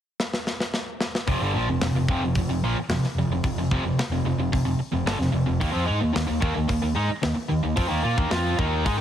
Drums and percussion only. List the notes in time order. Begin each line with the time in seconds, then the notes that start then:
0.20 snare
0.33 snare
0.47 snare
0.60 snare
0.74 snare
1.00 snare
1.15 snare
1.28 kick, open hi-hat
1.81 snare, open hi-hat
2.08 kick
2.35 kick, open hi-hat
2.89 snare, open hi-hat
3.04 snare
3.44 kick, open hi-hat
3.71 kick
3.99 snare, open hi-hat
4.53 kick, open hi-hat
5.07 snare, open hi-hat
5.21 snare
5.61 kick, open hi-hat
6.16 snare, open hi-hat
6.42 kick
6.69 kick, open hi-hat
7.23 snare, open hi-hat
7.76 kick, open hi-hat
8.18 kick
8.31 snare, open hi-hat
8.59 kick
8.86 kick, open hi-hat